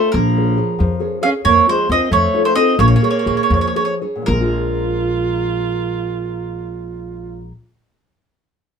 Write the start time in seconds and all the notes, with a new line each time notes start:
Already playing: A3 C5
0.12 A#1 F3 A#3 A#4
0.37 G#4 A#4 C#5
0.56 G#4 A#4 C#5
0.79 F2 F3
1.00 G#4 A#4 C#5
1.22 C#4 G#4 A#4 C#5 F5
1.44 F2 F3 A#3 C#5
1.66 G#3 C#4 F4 A#4 C5
1.89 F2 C4 C#4 F4 A#4 D#5
2.10 F2 F3 A3 C#5
2.34 D#4 F4 A4
2.45 A3 C5
2.55 C4 D#4 F4 A4 D#5
2.78 A#1 A#3 C#5
2.88 C#5
2.96 C#5
3.02 G#4 A#4 C#5
3.11 C#5
3.19 C#5
3.26 A#1 G#4 A#4 C#5
3.37 C#5
3.43 C#5
3.50 F2 F3 C#5
3.61 C#5
3.67 C#5
3.76 G#4 A#4 C#5
3.85 C#5
4.02 G#4 A#4 C#5
4.16 A#2
4.22 F3
4.26 A#1 G#3 F4 A#4
4.35 C#4
4.41 F4